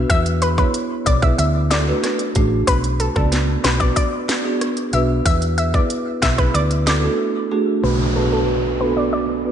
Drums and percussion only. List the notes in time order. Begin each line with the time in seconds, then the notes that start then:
0.10 kick, closed hi-hat
0.26 closed hi-hat
0.42 closed hi-hat
0.58 kick
0.74 closed hi-hat
1.07 kick, closed hi-hat
1.23 kick
1.39 closed hi-hat
1.71 snare, closed hi-hat
2.04 cross-stick, snare, closed hi-hat
2.19 closed hi-hat
2.35 kick, closed hi-hat
2.68 kick, closed hi-hat
2.84 closed hi-hat
3.00 closed hi-hat
3.16 kick
3.32 snare, closed hi-hat
3.64 snare, closed hi-hat
3.81 kick
3.96 kick, closed hi-hat
4.29 snare, closed hi-hat
4.61 cross-stick, closed hi-hat
4.77 closed hi-hat
4.93 closed hi-hat
5.26 kick, closed hi-hat
5.42 closed hi-hat
5.58 closed hi-hat
5.74 kick
5.90 closed hi-hat
6.22 kick, snare, closed hi-hat
6.39 kick
6.55 closed hi-hat
6.71 closed hi-hat
6.87 snare, closed hi-hat